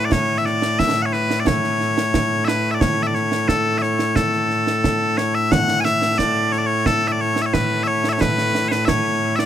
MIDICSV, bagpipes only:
0, 0, Header, 1, 2, 480
1, 0, Start_track
1, 0, Key_signature, 3, "major"
1, 0, Tempo, 674157
1, 85, Time_signature, 2, 2, 24, 8
1, 6733, End_track
2, 0, Start_track
2, 0, Title_t, "Bagpipes"
2, 0, Program_c, 0, 109
2, 0, Note_on_c, 0, 45, 89
2, 0, Note_on_c, 0, 57, 89
2, 34, Note_on_c, 0, 74, 78
2, 84, Note_off_c, 0, 74, 0
2, 84, Note_on_c, 0, 73, 98
2, 272, Note_off_c, 0, 73, 0
2, 272, Note_on_c, 0, 76, 70
2, 326, Note_off_c, 0, 76, 0
2, 326, Note_on_c, 0, 74, 102
2, 565, Note_off_c, 0, 74, 0
2, 565, Note_on_c, 0, 76, 100
2, 727, Note_off_c, 0, 76, 0
2, 727, Note_on_c, 0, 78, 70
2, 753, Note_off_c, 0, 78, 0
2, 753, Note_on_c, 0, 73, 70
2, 804, Note_off_c, 0, 73, 0
2, 804, Note_on_c, 0, 71, 93
2, 996, Note_off_c, 0, 71, 0
2, 996, Note_on_c, 0, 74, 68
2, 1044, Note_off_c, 0, 74, 0
2, 1044, Note_on_c, 0, 73, 96
2, 1743, Note_off_c, 0, 73, 0
2, 1743, Note_on_c, 0, 76, 83
2, 1767, Note_off_c, 0, 76, 0
2, 1767, Note_on_c, 0, 71, 83
2, 1931, Note_off_c, 0, 71, 0
2, 1931, Note_on_c, 0, 76, 72
2, 1957, Note_off_c, 0, 76, 0
2, 1957, Note_on_c, 0, 74, 72
2, 1998, Note_off_c, 0, 74, 0
2, 1998, Note_on_c, 0, 73, 109
2, 2157, Note_off_c, 0, 73, 0
2, 2157, Note_on_c, 0, 76, 72
2, 2187, Note_off_c, 0, 76, 0
2, 2187, Note_on_c, 0, 74, 72
2, 2239, Note_off_c, 0, 74, 0
2, 2239, Note_on_c, 0, 73, 96
2, 2480, Note_off_c, 0, 73, 0
2, 2480, Note_on_c, 0, 69, 88
2, 2694, Note_off_c, 0, 69, 0
2, 2694, Note_on_c, 0, 76, 83
2, 2721, Note_off_c, 0, 76, 0
2, 2721, Note_on_c, 0, 73, 83
2, 2961, Note_off_c, 0, 73, 0
2, 2961, Note_on_c, 0, 69, 80
2, 3685, Note_off_c, 0, 69, 0
2, 3685, Note_on_c, 0, 73, 90
2, 3808, Note_off_c, 0, 73, 0
2, 3808, Note_on_c, 0, 76, 91
2, 3928, Note_off_c, 0, 76, 0
2, 3928, Note_on_c, 0, 78, 115
2, 4131, Note_off_c, 0, 78, 0
2, 4131, Note_on_c, 0, 80, 113
2, 4161, Note_off_c, 0, 80, 0
2, 4161, Note_on_c, 0, 76, 113
2, 4402, Note_off_c, 0, 76, 0
2, 4402, Note_on_c, 0, 74, 98
2, 4643, Note_off_c, 0, 74, 0
2, 4643, Note_on_c, 0, 73, 92
2, 4685, Note_off_c, 0, 73, 0
2, 4685, Note_on_c, 0, 74, 86
2, 4743, Note_off_c, 0, 74, 0
2, 4743, Note_on_c, 0, 73, 103
2, 4887, Note_off_c, 0, 73, 0
2, 4887, Note_on_c, 0, 69, 107
2, 5039, Note_off_c, 0, 69, 0
2, 5039, Note_on_c, 0, 76, 73
2, 5071, Note_off_c, 0, 76, 0
2, 5071, Note_on_c, 0, 74, 73
2, 5131, Note_off_c, 0, 74, 0
2, 5131, Note_on_c, 0, 73, 100
2, 5283, Note_off_c, 0, 73, 0
2, 5283, Note_on_c, 0, 76, 73
2, 5312, Note_off_c, 0, 76, 0
2, 5312, Note_on_c, 0, 73, 73
2, 5365, Note_off_c, 0, 73, 0
2, 5365, Note_on_c, 0, 71, 90
2, 5579, Note_off_c, 0, 71, 0
2, 5579, Note_on_c, 0, 76, 94
2, 5607, Note_off_c, 0, 76, 0
2, 5607, Note_on_c, 0, 73, 94
2, 5762, Note_off_c, 0, 73, 0
2, 5762, Note_on_c, 0, 76, 79
2, 5787, Note_off_c, 0, 76, 0
2, 5787, Note_on_c, 0, 73, 79
2, 5844, Note_off_c, 0, 73, 0
2, 5844, Note_on_c, 0, 71, 109
2, 6184, Note_off_c, 0, 71, 0
2, 6184, Note_on_c, 0, 73, 83
2, 6207, Note_off_c, 0, 73, 0
2, 6207, Note_on_c, 0, 71, 83
2, 6303, Note_off_c, 0, 71, 0
2, 6303, Note_on_c, 0, 76, 102
2, 6327, Note_off_c, 0, 76, 0
2, 6327, Note_on_c, 0, 73, 102
2, 6663, Note_off_c, 0, 73, 0
2, 6663, Note_on_c, 0, 76, 80
2, 6689, Note_off_c, 0, 76, 0
2, 6689, Note_on_c, 0, 74, 80
2, 6733, Note_off_c, 0, 45, 0
2, 6733, Note_off_c, 0, 57, 0
2, 6733, Note_off_c, 0, 74, 0
2, 6733, End_track
0, 0, End_of_file